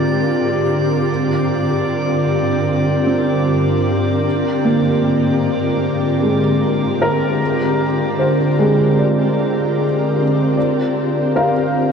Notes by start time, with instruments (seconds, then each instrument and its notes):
Already playing: ambient pad G#2 D3 C4 F4 G4 A#4, synth texture D5 D6
1.10 ambient pad G2
3.06 felt piano C4
4.26 ambient pad G#2
4.64 felt piano A#3
6.23 felt piano G#3
7.02 felt piano A#4
8.19 felt piano C5
8.59 felt piano G#3
8.99 felt piano D5
10.57 felt piano D5
11.36 felt piano A#4 F5